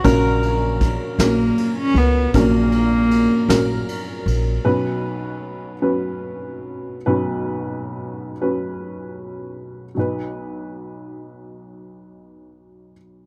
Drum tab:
RD |xxxxxx|xxxxxx|------|------|
SD |---o--|---o--|------|------|
BD |o-o---|o-----|------|------|

RD |------|
SD |------|
BD |------|